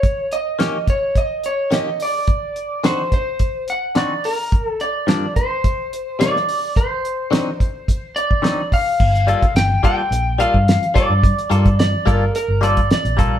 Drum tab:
CC |----------------|----------------|----------------|----------------|
HH |x-x-x-x-x-x-x-o-|x-x-x-x-x-x-x-o-|x-x-x-x-x-x-x-o-|x-x-x-x-x-x-x-o-|
SD |----o-------o---|----o-------o---|----o-------oo--|----o-------o---|
BD |o-----o-o-------|o-----o-o-------|o-----o-o-------|o-----o-o--o--o-|

CC |x---------------|----------------|
HH |-xxxx-x-x-x-xxx-|xxxxx-x-x-xxxxx-|
SD |----o-------o-o-|----o-------o---|
BD |o--o--o----o--o-|o--o--o----o--o-|